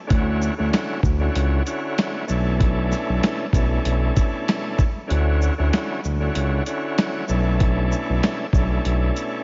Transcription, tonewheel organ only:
0.07 0.54 D3 loud
0.07 0.54 C#4 medium
0.07 0.54 E4 medium
0.07 0.55 F#4 loud
0.58 1.00 D3 medium
0.58 1.00 C#4 medium
0.58 1.01 E4 medium
0.58 1.01 F#4 loud
1.20 1.62 D3 medium
1.20 1.63 C#4 medium
1.20 1.63 E4 medium
1.20 1.64 F#4 loud
1.66 2.24 D3 medium
1.66 2.25 C#4 medium
1.66 2.25 E4 medium
1.66 2.26 F#4 loud
2.27 2.56 B2 loud
2.27 2.56 A3 medium
2.27 2.57 C#4 medium
2.27 2.57 D4 medium
2.27 2.58 E4 medium
2.57 3.46 B2 loud
2.57 3.46 A3 loud
2.57 3.47 C#4 medium
2.57 3.47 D4 medium
2.57 3.47 E4 loud
3.53 4.83 B2 medium
3.53 4.84 A3 medium
3.53 4.84 C#4 medium
3.53 4.84 D4 medium
3.53 4.84 E4 loud
5.07 5.54 D3 medium
5.07 5.54 C#4 medium
5.07 5.54 E4 medium
5.07 5.55 F#4 loud
5.58 6.00 D3 medium
5.58 6.01 C#4 medium
5.58 6.01 E4 medium
5.58 6.01 F#4 loud
6.20 6.63 D3 medium
6.20 6.63 C#4 medium
6.20 6.63 E4 medium
6.20 6.64 F#4 loud
6.66 7.25 D3 medium
6.66 7.25 C#4 medium
6.66 7.25 E4 medium
6.66 7.26 F#4 loud
7.27 7.56 B2 loud
7.27 7.56 A3 medium
7.27 7.57 C#4 medium
7.27 7.57 D4 medium
7.27 7.58 E4 medium
7.57 8.46 B2 loud
7.57 8.46 A3 medium
7.57 8.46 C#4 medium
7.57 8.47 D4 medium
7.57 8.47 E4 loud
8.53 9.44 B2 medium
8.53 9.44 A3 medium
8.53 9.44 C#4 medium
8.53 9.44 D4 medium
8.53 9.44 E4 medium

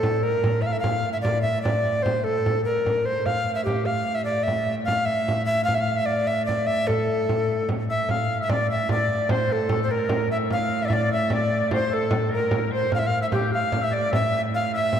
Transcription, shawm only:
7.90 8.08 E5 medium
8.10 8.42 F5 medium
8.40 8.51 E5 medium
8.49 8.69 D5 medium
8.69 8.88 E5 medium
8.90 9.27 D5 medium
9.30 9.52 C5 medium
9.51 9.89 A4 medium
9.90 10.00 A#4 medium
9.98 10.06 A4 medium
10.04 10.30 A#4 medium
10.31 10.49 E5 medium
10.51 10.87 F5 medium
10.85 10.90 E5 medium
10.90 11.09 D5 medium
11.11 11.30 E5 medium
11.31 11.50 D5 medium
11.51 11.70 D5 medium
11.71 11.90 C5 medium
11.91 12.33 A4 medium
12.31 12.73 A#4 medium
12.71 12.93 C5 medium
12.92 13.05 F5 medium
13.05 13.21 F5 medium
13.21 13.31 E5 medium
13.33 13.53 G5 medium
13.52 13.83 F5 medium
13.82 13.90 E5 medium
13.91 14.10 D5 medium
14.10 14.39 E5 medium
14.73 15.00 E5 medium

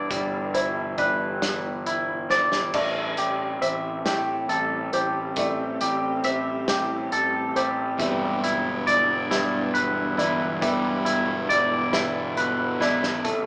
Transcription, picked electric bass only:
0.11 2.70 G1 medium
2.74 3.14 A1 medium
3.18 3.58 A1 medium
3.61 4.01 A1 medium
4.06 4.45 A2 medium
4.49 4.89 A1 medium
4.93 5.33 A1 medium
5.37 5.77 A1 medium
5.82 6.21 A1 medium
6.25 6.65 A1 medium
6.68 7.08 A1 medium
7.12 7.52 A1 medium
7.56 7.96 A1 medium
7.99 8.39 G1 medium
8.43 8.83 G1 medium
8.87 9.27 G1 medium
9.31 9.71 G2 medium
9.75 10.15 G1 medium
10.19 10.59 G1 medium
10.62 11.02 G1 medium
11.07 11.47 G1 medium
11.50 11.90 G1 medium
11.94 12.34 G1 medium
12.37 12.77 G1 medium
12.81 13.21 G#1 medium
13.25 13.46 A1 soft

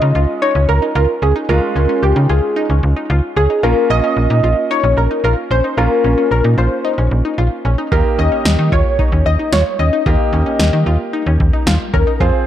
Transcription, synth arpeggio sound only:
0.02 0.12 D#4 medium
0.15 0.36 F4 medium
0.42 0.52 D#4 medium
0.55 0.76 C#4 medium
0.82 0.93 D#4 medium
0.95 1.16 F4 medium
1.22 1.33 C#4 medium
1.36 1.46 D#4 medium
1.49 1.70 F4 medium
1.76 1.86 C#4 medium
1.89 2.10 C#4 medium
2.16 2.26 D#4 medium
2.29 2.50 F4 medium
2.56 2.67 D#4 medium
2.70 2.91 C#4 medium
2.96 3.07 D#4 medium
3.10 3.31 F4 medium
3.37 3.47 C#4 medium
3.50 3.60 D#4 medium
3.63 3.84 F4 medium
3.90 4.01 C#4 medium
4.04 4.24 C#4 medium
4.30 4.41 D#4 medium
4.44 4.65 F4 medium
4.71 4.81 D#4 medium
4.84 5.05 C#4 medium
5.11 5.21 D#4 medium
5.24 5.45 F4 medium
5.51 5.61 C#4 medium
5.64 5.75 D#4 medium
5.78 5.99 F4 medium
6.04 6.15 C#4 medium
6.18 6.39 C#4 medium
6.44 6.55 D#4 medium
6.58 6.79 F4 medium
6.85 6.95 D#4 medium
6.98 7.19 C#4 medium
7.25 7.35 D#4 medium
7.38 7.59 F4 medium
7.65 7.75 C#4 medium
7.78 7.89 D#4 medium
7.92 8.13 F4 medium
8.19 8.29 C#4 medium
8.32 8.53 C#4 medium
8.59 8.69 D#4 medium
8.72 8.93 F4 medium
8.99 9.09 D#4 medium
9.12 9.33 C#4 medium
9.39 9.50 D#4 medium
9.53 9.73 F4 medium
9.79 9.90 C#4 medium
9.93 10.03 D#4 medium
10.06 10.27 F4 medium
10.33 10.43 C#4 medium
10.46 10.67 C#4 medium
10.73 10.84 D#4 medium
10.87 11.07 F4 medium
11.13 11.24 D#4 medium
11.27 11.48 C#4 medium
11.53 11.64 D#4 medium
11.67 11.88 F4 medium
11.94 12.04 C#4 medium
12.07 12.17 D#4 medium
12.21 12.41 F4 medium

